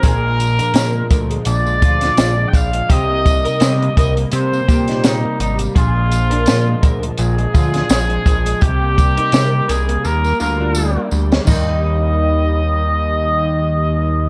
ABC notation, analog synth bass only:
X:1
M:4/4
L:1/8
Q:"Swing 16ths" 1/4=84
K:Eb
V:1 name="Analog synth bass" clef=bass
B,,,2 B,, D,, B,,, D,, B,,, B,,, | C,,2 C, C,, C, B,,2 A,,, | B,,,2 B,, D,, B,,, D,, B,,, B,,, | C,,2 C, C,, E,, D,,2 D,, |
E,,8 |]